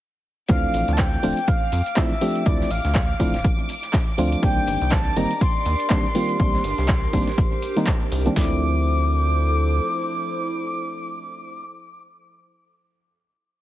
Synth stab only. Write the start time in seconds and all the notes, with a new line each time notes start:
0.49 E3 F3 A3 C4 D4
1.23 F3 A3 C4 D4 F4
1.96 F3 A3 C4 D4 E4
2.21 F3 A3 C4 D4 G4
2.46 F3 A3 C4 D4 E4
3.19 F3 A3 C4 D4 E4
4.18 F3 A3 C4 D4 F4
4.42 D#3 G3 A#3 C4 D4
5.16 D#3 G3 A#3 C4 D#4
5.90 D#3 G3 A#3 C4 D4
6.15 D#3 G3 A#3 C4 F4
6.39 D#3 G3 A#3 C4 D4
7.13 D#3 G3 A#3 C4 D4
7.76 D#3 G3 A#3 C4 D#4
8.25 D#3 G3 A#3 C4 D4
8.35 F3 A3 C4 D4 E4